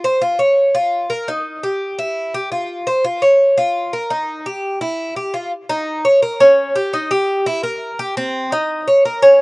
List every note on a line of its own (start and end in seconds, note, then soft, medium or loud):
0.04 0.21 C5 medium
0.21 0.39 F4 medium
0.39 0.74 C#5 medium
0.75 1.09 F4 medium
1.10 1.27 A#4 medium
1.28 1.62 D#4 medium
1.63 1.98 G4 medium
1.99 2.33 E4 medium
2.34 2.51 G4 medium
2.52 2.86 F4 medium
2.87 3.04 C5 medium
3.04 3.22 F4 medium
3.22 3.56 C#5 medium
3.58 3.92 F4 medium
3.93 4.10 A#4 medium
4.10 4.45 D#4 medium
4.46 4.80 G4 medium
4.81 5.15 E4 medium
5.16 5.34 G4 medium
5.34 5.51 F4 medium
5.69 6.04 D#4 medium
6.05 6.22 C#5 medium
6.22 6.40 A#4 medium
6.40 6.75 C#4 medium
6.76 6.93 G4 medium
6.93 7.10 D#4 medium
7.11 7.45 G4 medium
7.46 7.63 E4 medium
7.63 7.98 A#4 medium
7.99 8.16 G4 medium
8.17 8.51 C4 medium
8.52 8.86 D#4 medium
8.88 9.05 C#5 medium
9.05 9.22 A#4 medium
9.22 9.41 C#4 medium